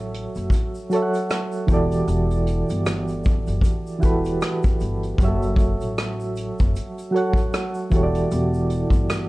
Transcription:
Already playing: upright bass A1, synth keys F#3 F#4 A4 C#5 E5
0.14 closed hi-hat
0.35 upright bass F#1, closed hi-hat, shaker
0.50 kick, closed hi-hat, shaker
0.75 shaker
0.90 synth keys F#3 F#4 A4, closed hi-hat, shaker
0.94 synth keys C#5 E5
1.02 synth keys F#5
1.14 closed hi-hat, shaker
1.30 cross-stick, closed hi-hat, shaker
1.52 shaker
1.67 upright bass E1, synth keys E3 E4 F#4 G4, kick, closed hi-hat, shaker
1.72 synth keys A4 D5
1.91 closed hi-hat, shaker
2.08 upright bass E1, closed hi-hat, shaker
2.31 closed hi-hat, shaker
2.46 closed hi-hat, shaker
2.69 upright bass G1, closed hi-hat, shaker
2.86 cross-stick, closed hi-hat, shaker
3.08 closed hi-hat, shaker
3.24 kick, closed hi-hat, shaker
3.47 upright bass F#1, closed hi-hat, shaker
3.61 kick, closed hi-hat, shaker
3.87 shaker
3.98 synth keys E3 E4 F#4 G4, shaker
4.03 upright bass E1, synth keys A4 B4, kick, closed hi-hat
4.25 closed hi-hat, shaker
4.41 cross-stick, closed hi-hat, shaker
4.63 kick, closed hi-hat, shaker
4.80 upright bass G1, closed hi-hat, shaker
5.03 closed hi-hat, shaker
5.18 upright bass F#1, synth keys F#3 F#4 G4, kick, closed hi-hat, shaker
5.23 synth keys C#5 E5
5.28 synth keys A4
5.42 closed hi-hat, shaker
5.56 kick, closed hi-hat, shaker
5.81 upright bass A1, closed hi-hat, shaker
5.98 cross-stick, closed hi-hat, shaker
6.20 shaker
6.36 closed hi-hat, shaker
6.59 upright bass F#1, kick, closed hi-hat, shaker
6.76 closed hi-hat, shaker
6.98 closed hi-hat, shaker
7.11 synth keys F#3 F#4 A4
7.16 synth keys C#5 F#5, closed hi-hat
7.33 kick, closed hi-hat, shaker
7.53 cross-stick, closed hi-hat, shaker
7.74 shaker
7.90 upright bass E1, synth keys E3 E4 F#4 G4, kick, closed hi-hat, shaker
7.95 synth keys A4 C#5
8.03 synth keys D5
8.14 closed hi-hat, shaker
8.31 upright bass E1, closed hi-hat, shaker
8.54 shaker
8.70 closed hi-hat, shaker
8.90 upright bass G1, kick, closed hi-hat, shaker
9.10 cross-stick, closed hi-hat, shaker

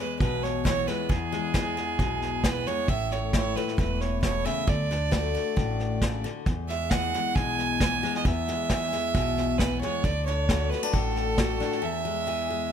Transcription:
Already playing: steel-string acoustic guitar E2 E3 G#4
0.00 steel-string acoustic guitar G#3, fiddle B4
0.20 upright bass B1, steel-string acoustic guitar B2, fiddle B4, kick, snare
0.43 fiddle C#5, snare
0.65 steel-string acoustic guitar E3 B3, fiddle C#5, kick, snare, hi-hat pedal
0.88 steel-string acoustic guitar G#3, fiddle B4, snare
1.09 steel-string acoustic guitar E2, upright bass E2, fiddle G#4, kick, snare
1.32 steel-string acoustic guitar G#3, snare
1.54 steel-string acoustic guitar E3 B3, kick, snare, hi-hat pedal
1.77 steel-string acoustic guitar G#3, snare
1.99 upright bass B1, steel-string acoustic guitar B2, kick, snare
2.22 snare
2.44 steel-string acoustic guitar E3 B3, fiddle B4, kick, snare, hi-hat pedal
2.66 steel-string acoustic guitar G#3, fiddle C#5, snare
2.88 upright bass A1, steel-string acoustic guitar A2, fiddle E5, kick, snare
3.11 steel-string acoustic guitar A3, fiddle C#5, snare
3.33 steel-string acoustic guitar E3 E4, fiddle C#5, kick, snare, hi-hat pedal
3.56 steel-string acoustic guitar A3, fiddle B4, snare
3.68 snare
3.78 upright bass E1, steel-string acoustic guitar E2, fiddle B4, kick, snare
4.01 fiddle C#5, snare
4.22 steel-string acoustic guitar B2, fiddle C#5, kick, snare, hi-hat pedal
4.45 steel-string acoustic guitar C#3, fiddle E5, snare
4.67 upright bass D2, steel-string acoustic guitar D3, fiddle D5, kick, snare
4.91 steel-string acoustic guitar D4, snare
5.11 steel-string acoustic guitar A3 F#4, kick, snare, hi-hat pedal
5.35 steel-string acoustic guitar D4, snare
5.56 upright bass A1, steel-string acoustic guitar A2, kick, snare
5.80 snare
6.02 steel-string acoustic guitar C#3, kick, snare, hi-hat pedal
6.24 steel-string acoustic guitar D3, snare
6.46 upright bass E2, steel-string acoustic guitar E2, kick, snare
6.68 steel-string acoustic guitar G#3, fiddle E5, snare
6.90 steel-string acoustic guitar E3 G#4, fiddle F#5, kick, snare, hi-hat pedal
7.13 steel-string acoustic guitar G#3, snare
7.35 upright bass B1, steel-string acoustic guitar B2, fiddle G#5, kick, snare
7.58 snare
7.80 steel-string acoustic guitar E3 B3, kick, snare, hi-hat pedal
8.03 steel-string acoustic guitar G#3, snare
8.15 fiddle D#5, snare
8.25 upright bass E2, steel-string acoustic guitar E2, fiddle E5, kick, snare
8.48 steel-string acoustic guitar G#3, snare
8.70 steel-string acoustic guitar E3 G#4, kick, snare, hi-hat pedal
8.92 steel-string acoustic guitar G#3, snare
9.15 upright bass B1, steel-string acoustic guitar B2, kick, snare
9.37 snare
9.58 steel-string acoustic guitar E3 B3, fiddle B4, kick, snare, hi-hat pedal
9.81 steel-string acoustic guitar G#3, fiddle C#5, snare
10.04 upright bass D2, steel-string acoustic guitar D3, fiddle D5, kick, snare
10.26 steel-string acoustic guitar D4, fiddle C#5, snare
10.49 steel-string acoustic guitar A3 F#4, kick, snare, hi-hat pedal
10.70 steel-string acoustic guitar B3, fiddle B4, snare
10.83 steel-string acoustic guitar D4, snare
10.93 upright bass A1, steel-string acoustic guitar A2, fiddle A4, kick, snare
11.16 snare
11.38 steel-string acoustic guitar A3 F#4, kick, snare, hi-hat pedal
11.60 steel-string acoustic guitar D4, snare
11.72 snare
11.82 steel-string acoustic guitar E2, fiddle E5
12.05 steel-string acoustic guitar G#3
12.27 steel-string acoustic guitar E3 G#4
12.50 steel-string acoustic guitar G#3

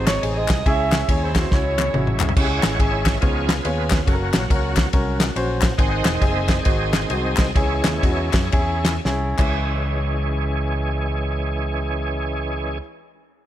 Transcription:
Already playing: fingered electric bass G#1, tonewheel organ C3 G#3 D#4, grand piano C4 D#4 F#4, saxophone section C4 D#4
0.07 saxophone section G#4 C#5, snare, clap, ride
0.23 fingered electric bass A1, grand piano C4 D#4 G#4, ride
0.37 saxophone section G#4 C5 D#5
0.48 fingered electric bass C2, kick, snare, clap, ride
0.65 fingered electric bass C#2, grand piano C#3 C#4 E4 G#4, tonewheel organ G#3 C#4 D#4, saxophone section G#4 C#5 E5, kick, ride
0.71 tonewheel organ E4
0.92 snare, clap, ride
1.09 fingered electric bass D#2, grand piano C#4 E4 G#4, saxophone section C#5, kick, ride
1.23 saxophone section E4 G#4 C5
1.35 grand piano C#4 E4 F#4, kick, snare, clap, ride
1.51 fingered electric bass C#2, grand piano C#4 E4 F#4, saxophone section E4 G#4 C#5, kick, snare
1.78 clap, high tom
1.94 fingered electric bass A1, grand piano C#4 E4 F#4, mid tom
2.07 mid tom
2.20 fingered electric bass C2, clap, floor tom
2.29 floor tom
2.36 fingered electric bass C#2, grand piano C#3 C#4 E4 G4, tonewheel organ G#3 C#4 E4 C#5 F#5, kick, crash
2.43 grand piano G#4
2.63 fingered electric bass A1, snare, clap, ride
2.79 fingered electric bass G#1, grand piano C#4 E4 G#4, tonewheel organ G#4 C#5 E5, kick, ride
3.06 kick, snare, clap, ride
3.20 fingered electric bass C#2, grand piano C#3 B3 C#4 F4 G#4 C#5, tonewheel organ F3 B3 D#4 F4 G#4 C#5, kick, ride
3.49 snare, clap, ride
3.56 tonewheel organ F4 G#4 B4
3.65 fingered electric bass D#2, grand piano B3 C#4 F4 G#4 C#5, ride
3.90 tonewheel organ B4, kick, snare, clap, ride
4.01 tonewheel organ F4
4.05 fingered electric bass F#1, tonewheel organ F#3 A#3 C#4 F#4, grand piano C#4 F#4 A4, kick, ride
4.13 grand piano A#4
4.34 fingered electric bass A#1, snare, clap, ride
4.50 fingered electric bass C#2, grand piano C#4 F#4 A#4, kick, ride
4.77 kick, snare, clap, ride
4.93 fingered electric bass C2, grand piano C#4 F#4 A#4, kick, ride
5.20 snare, clap, ride
5.36 fingered electric bass A#1, grand piano C#4 F#4 C5, ride
5.61 kick, snare, clap, ride
5.78 fingered electric bass G#1, grand piano G#2 C4 D#4 G#4, tonewheel organ D#3 G#3 C4 C5 D#5 F#5, kick, ride
6.05 fingered electric bass E1, snare, clap, ride
6.21 fingered electric bass F#1, grand piano C4 D#4 G#4, tonewheel organ G#4 C5 E5, kick, ride
6.48 kick, snare, clap, ride
6.60 tonewheel organ D5
6.64 fingered electric bass G#1, grand piano C4 D#4 F#4, tonewheel organ G#4 C5 D#5, kick, ride
6.93 snare, clap, ride
7.08 fingered electric bass C2, grand piano C4 D#4 F#4, tonewheel organ G#4 C5 D#5, ride
7.37 fingered electric bass C2, kick, snare, clap, ride
7.54 fingered electric bass C#2, grand piano C#3 C#4 E4 G#4, tonewheel organ E3 G#3 C#4 E4 G#4 C#5, kick, ride
7.84 fingered electric bass D#2, snare, clap, ride
8.03 fingered electric bass E2, grand piano C#4 D#4 F#4, kick, ride
8.08 grand piano E4
8.33 fingered electric bass F#2, kick, snare, clap, ride
8.52 fingered electric bass E2, grand piano C#4 E4 G#4, kick, ride
8.84 snare, clap, ride
9.05 fingered electric bass C2, grand piano C#4 E4 G#4, snare
9.37 fingered electric bass C#2, grand piano C#2 C#4 E4 G#4, tonewheel organ E3 G#3 C#4 G#4, kick, clap, crash
9.41 grand piano E5

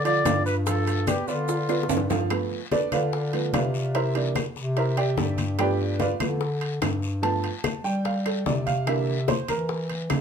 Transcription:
Already playing: bass clarinet D3
0.05 upright piano F3 F4 F5, trumpet D5, high conga, high timbale, maracas
0.25 bass clarinet G2, upright piano F3 F4 F5, high bongo, low bongo, high conga, high timbale, low timbale, short guiro, claves, maracas
0.46 trumpet B4, high conga, short guiro, maracas
0.66 upright piano F3 F4 F5, trumpet A4, high bongo, high conga, high timbale, long guiro, maracas
0.87 high bongo, high conga, high timbale, maracas
1.07 upright piano B3 B4 D5, trumpet G4, high bongo, high conga, high timbale, low timbale, short guiro, claves, maracas
1.28 bass clarinet D3, upright piano B3 B4 D5, trumpet F4, high bongo, high conga, short guiro, maracas
1.48 high bongo, high conga, high timbale, long guiro, maracas
1.69 upright piano B3 B4 D5, high bongo, high conga, high timbale, claves, maracas
1.83 high bongo
1.89 bass clarinet G2, high conga, low timbale, short guiro, maracas
1.97 low bongo
2.09 upright piano F3 F4 F5, low bongo, high conga, low timbale, short guiro, maracas
2.30 upright piano F3 A3 B3, high bongo, high timbale, long guiro, claves
2.51 high conga
2.71 upright piano D4 A4 B4 D5, high bongo, high conga, high timbale, low timbale, short guiro
2.92 bass clarinet D3, upright piano F4 B4 D5 F5, high conga, high timbale, short guiro, claves
3.12 high bongo, high conga, long guiro
3.33 upright piano F3 A3 B3, high conga, high timbale
3.53 bass clarinet C3, upright piano F4 B4 D5 F5, high bongo, low bongo, high conga, high timbale, low timbale, short guiro, claves
3.74 high conga, short guiro
3.94 upright piano E4 A#4 C5 E5, high bongo, high conga, high timbale, long guiro
4.15 upright piano E3 A#3 D4, high bongo, high conga, high timbale
4.35 high bongo, high conga, high timbale, low timbale, short guiro, claves
4.56 bass clarinet C3, high bongo, high conga, short guiro
4.76 upright piano E4 A#4 C5 E5, high bongo, high conga, high timbale, long guiro
4.97 upright piano G4 D5 E5 G5, high bongo, high conga, high timbale, claves
5.17 bass clarinet G2, high bongo, low bongo, high conga, low timbale, short guiro
5.38 high conga, high timbale, short guiro
5.58 upright piano F3 A3 B3 G4 B4 D5 G5, high bongo, high conga, high timbale, long guiro, claves
5.79 high conga
5.99 upright piano F4 B4 D5 F5, high bongo, high conga, high timbale, low timbale, short guiro
6.20 bass clarinet D3, upright piano F3 A3 B3, high conga, high timbale, short guiro, claves
6.41 high bongo, high conga, long guiro
6.61 high conga, high timbale
6.81 bass clarinet G2, high bongo, low bongo, high conga, high timbale, low timbale, short guiro, claves
7.02 high conga, short guiro
7.22 upright piano F3 A3 B3 A5, high bongo, high conga, high timbale, long guiro
7.44 high bongo, high conga, high timbale
7.64 high bongo, high conga, high timbale, low timbale, short guiro, claves
7.84 bass clarinet G3, upright piano G5, high bongo, high conga, short guiro
8.05 upright piano F5, high bongo, high conga, high timbale, long guiro
8.26 upright piano A4, high bongo, high conga, high timbale, claves
8.46 bass clarinet C3, upright piano D5, high bongo, low bongo, high conga, low timbale, short guiro
8.66 upright piano F5, high conga, high timbale, short guiro
8.87 upright piano D3 E3 A#3 E5, high bongo, high conga, high timbale, long guiro, claves
9.08 high conga
9.28 upright piano C5, high bongo, high conga, high timbale, low timbale, short guiro
9.48 bass clarinet E3, upright piano A#4, high conga, high timbale, short guiro, claves
9.69 high bongo, high conga, long guiro
9.89 high conga, high timbale
10.10 bass clarinet C#3, high bongo, low bongo, high conga, high timbale, low timbale, short guiro, claves

